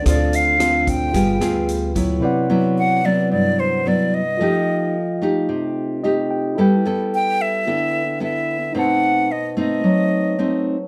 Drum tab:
HH |xxxxxxxx|--------|--------|--------|
SD |r-r--r--|--------|--------|--------|
BD |o--oo--o|--------|--------|--------|

HH |--------|
SD |--------|
BD |--------|